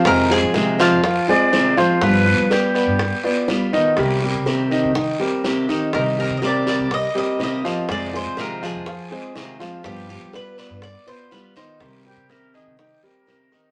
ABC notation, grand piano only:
X:1
M:4/4
L:1/8
Q:1/4=123
K:Cm
V:1 name="Grand piano"
[A,Ac] [A,Ac]2 [F,Ff] [F,Ff] [A,Ac]2 [F,Ff] | [F,Ff]2 [=B,=Bd] [B,Bd]2 [B,Bd]2 [E,Ee] | [G,GB] [G,GB]2 [E,Ee] [E,Ee] [G,GB]2 [E,Ee] | [E,Ee]2 [G,GB] [G,GB]2 [G,GB]2 [F,Ff] |
[A,Ac] [A,Ac]2 [F,Ff] [F,Ff] [A,Ac]2 [F,Ff] | [F,Ff]2 [=B,=Bd] [B,Bd]2 [B,Bd]2 [E,Ee] | [G,GB] [G,GB]2 [E,Ee] [E,Ee] [G,GB]2 [E,Ee] |]